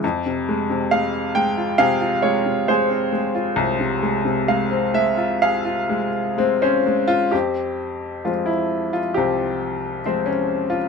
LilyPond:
<<
  \new Staff \with { instrumentName = "Upright piano" } { \time 4/4 \key f \minor \tempo 4 = 66 << { fes''4 r4 aes'4 aes'4~ | aes'4 r4 aes'2 | c'2 c'2 | } \\ { aes''4 f''8 g''8 f''8 des''8 c''4~ | c''4 f''8 e''8 f''4 c'16 des'8 f'16 | g'4 f'16 e'8 f'16 g'4 c'16 des'8 f'16 | } >> }
  \new Staff \with { instrumentName = "Upright piano" } { \clef bass \time 4/4 \key f \minor f,16 c16 aes16 c16 aes8 aes16 f'16 c16 f'16 aes16 c16 aes16 c'16 aes16 f'16 | c,16 c16 aes16 c16 aes16 c'16 aes16 f'8 f'16 aes8 aes16 c''16 aes8 | f,4 <f aes c'>4 c,4 <f aes c''>4 | }
>>